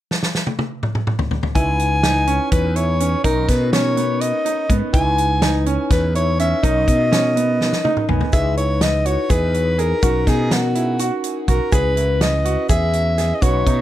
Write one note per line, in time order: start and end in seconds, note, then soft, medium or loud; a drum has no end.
0.11 snare medium
0.23 snare medium
0.35 snare medium
0.47 high tom medium
0.59 high tom medium
0.83 mid tom medium
0.95 mid tom medium
1.07 mid tom medium
1.19 floor tom medium
1.31 floor tom medium
1.43 floor tom medium
1.55 2.38 C#2 medium
1.55 3.21 D#4 medium
1.55 3.21 E4 medium
1.55 1.92 E4 medium
1.55 3.21 B4 medium
1.55 2.48 G#5 loud
1.55 kick loud
1.55 closed hi-hat medium
1.79 closed hi-hat medium
2.03 2.22 D#4 medium
2.03 snare medium
2.03 closed hi-hat medium
2.27 2.64 C#4 medium
2.27 closed hi-hat medium
2.52 3.14 E2 medium
2.52 2.78 B4 medium
2.52 kick medium
2.52 closed hi-hat medium
2.76 2.94 E4 medium
2.76 3.24 C#5 medium
2.76 closed hi-hat medium
3.00 3.19 C#4 medium
3.00 closed hi-hat medium
3.24 3.45 B1 medium
3.24 4.91 C#4 medium
3.24 3.61 D#4 medium
3.24 4.91 D#4 medium
3.24 3.50 A#4 medium
3.24 4.91 A#4 medium
3.24 kick loud
3.24 closed hi-hat medium
3.49 4.31 B2 medium
3.49 3.72 B4 medium
3.49 kick medium
3.49 snare soft
3.49 closed hi-hat medium
3.73 3.91 C#4 medium
3.73 4.22 C#5 medium
3.73 snare loud
3.73 closed hi-hat medium
3.97 4.34 B3 medium
3.97 closed hi-hat medium
4.21 4.75 D#5 medium
4.21 closed hi-hat medium
4.45 4.64 D#4 medium
4.45 closed hi-hat medium
4.70 4.80 G#2 medium
4.70 4.88 B3 medium
4.70 kick medium
4.70 closed hi-hat medium
4.93 5.76 C#2 medium
4.93 6.60 D#4 medium
4.93 6.60 E4 medium
4.93 5.31 E4 medium
4.93 6.60 B4 medium
4.93 5.59 G#5 medium
4.93 kick medium
4.93 closed hi-hat medium
5.18 closed hi-hat soft
5.42 5.60 D#4 medium
5.42 snare loud
5.42 closed hi-hat medium
5.66 6.03 C#4 medium
5.66 closed hi-hat medium
5.90 6.53 E2 medium
5.90 6.14 B4 medium
5.90 kick loud
5.90 snare soft
5.90 closed hi-hat medium
6.15 6.33 E4 medium
6.15 6.38 C#5 medium
6.15 closed hi-hat medium
6.39 6.58 C#4 medium
6.39 6.66 E5 medium
6.39 closed hi-hat medium
6.63 6.84 B1 medium
6.63 8.29 C#4 medium
6.63 7.00 D#4 medium
6.63 8.30 D#4 medium
6.63 8.30 A#4 medium
6.63 8.09 D#5 loud
6.63 kick loud
6.63 closed hi-hat medium
6.88 7.70 B2 medium
6.88 kick medium
6.88 closed hi-hat medium
7.12 7.30 C#4 medium
7.12 snare loud
7.12 closed hi-hat medium
7.36 7.73 B3 medium
7.36 closed hi-hat medium
7.61 snare medium
7.73 snare medium
7.84 8.03 D#4 medium
7.84 8.07 D#5 medium
7.84 high tom medium
7.97 mid tom medium
8.09 8.19 B1 medium
8.09 8.27 B3 medium
8.09 8.32 G#5 medium
8.09 mid tom medium
8.21 floor tom medium
8.33 9.16 C#2 medium
8.33 9.99 D#4 medium
8.33 9.99 E4 soft
8.33 8.51 G#4 medium
8.33 10.00 B4 medium
8.33 8.56 E5 loud
8.33 kick medium
8.33 closed hi-hat medium
8.33 shaker medium
8.57 8.94 E4 medium
8.57 8.84 C#5 medium
8.57 closed hi-hat medium
8.81 9.08 D#5 medium
8.81 snare loud
8.81 closed hi-hat medium
9.05 9.24 F#4 medium
9.05 9.32 C#5 medium
9.05 closed hi-hat medium
9.30 9.92 E2 medium
9.30 9.67 G#4 medium
9.30 9.81 B4 medium
9.30 kick medium
9.30 closed hi-hat medium
9.30 shaker soft
9.54 closed hi-hat soft
9.78 9.97 G#4 medium
9.78 10.30 A#4 medium
9.78 closed hi-hat medium
10.02 10.23 B1 medium
10.02 11.69 C#4 medium
10.02 11.69 D#4 soft
10.02 10.21 F#4 medium
10.02 11.69 A#4 medium
10.02 kick loud
10.02 closed hi-hat medium
10.02 shaker medium
10.27 11.10 B2 medium
10.27 10.64 D#4 medium
10.27 10.54 G#4 medium
10.27 kick medium
10.27 snare soft
10.27 closed hi-hat medium
10.51 11.25 F#4 medium
10.51 snare medium
10.51 closed hi-hat medium
10.75 10.94 E4 medium
10.75 closed hi-hat medium
10.99 11.37 F#4 medium
10.99 closed hi-hat medium
10.99 shaker medium
11.24 closed hi-hat medium
11.48 11.59 B1 medium
11.48 11.67 F#4 medium
11.48 11.71 A#4 medium
11.48 kick medium
11.48 closed hi-hat medium
11.72 12.55 C#2 medium
11.72 13.38 C#4 medium
11.72 13.39 E4 medium
11.72 11.91 G#4 medium
11.72 13.39 B4 medium
11.72 12.18 B4 medium
11.72 kick medium
11.72 closed hi-hat medium
11.72 shaker medium
11.96 12.33 E4 medium
11.96 closed hi-hat medium
12.21 12.67 D#5 medium
12.21 snare medium
12.21 closed hi-hat medium
12.45 12.64 F#4 medium
12.45 closed hi-hat medium
12.69 13.31 E2 medium
12.69 13.06 G#4 medium
12.69 13.36 E5 medium
12.69 kick medium
12.69 closed hi-hat medium
12.69 shaker medium
12.93 closed hi-hat soft
13.18 13.36 G#4 medium
13.18 snare soft
13.18 closed hi-hat medium
13.35 13.44 D#5 medium
13.42 13.63 B1 medium
13.42 13.81 C#4 medium
13.42 13.81 D#4 medium
13.42 13.61 F#4 medium
13.42 13.81 B4 medium
13.42 13.81 C#5 loud
13.42 kick loud
13.42 closed hi-hat medium
13.42 shaker medium
13.67 13.81 B2 medium
13.67 13.81 D#4 medium
13.67 kick medium
13.67 closed hi-hat medium